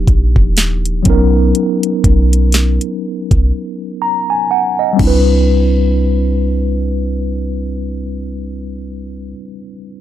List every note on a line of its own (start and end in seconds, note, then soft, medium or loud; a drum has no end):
0.00 1.00 F3 medium
0.00 1.01 A#3 medium
0.00 1.02 D4 medium
0.00 1.03 D#4 medium
0.00 1.04 G4 medium
0.07 0.35 A#1 loud
0.07 kick loud
0.07 closed hi-hat medium
0.36 1.03 D#1 medium
0.36 kick medium
0.57 snare loud
0.57 closed hi-hat medium
0.85 closed hi-hat medium
1.03 1.53 B1 loud
1.03 4.94 F#3 medium
1.03 4.95 B3 medium
1.03 4.95 C#4 medium
1.03 kick loud
1.03 closed hi-hat medium
1.08 4.96 D#4 medium
1.08 4.97 A#4 medium
1.55 closed hi-hat medium
1.83 closed hi-hat medium
2.04 2.79 B1 loud
2.04 kick medium
2.04 closed hi-hat medium
2.33 closed hi-hat medium
2.52 snare loud
2.52 closed hi-hat medium
2.81 closed hi-hat soft
3.31 3.51 B1 loud
3.31 kick medium
3.31 closed hi-hat medium
4.02 4.28 A#5 medium
4.30 4.49 G#5 medium
4.51 4.77 F#5 medium
4.79 4.98 D#5 medium
4.93 9.28 G3 medium
4.93 9.31 C4 medium
4.99 9.34 C2 loud
4.99 9.35 D4 medium
4.99 kick loud
4.99 crash medium
5.04 9.39 E4 medium
5.04 9.42 B4 medium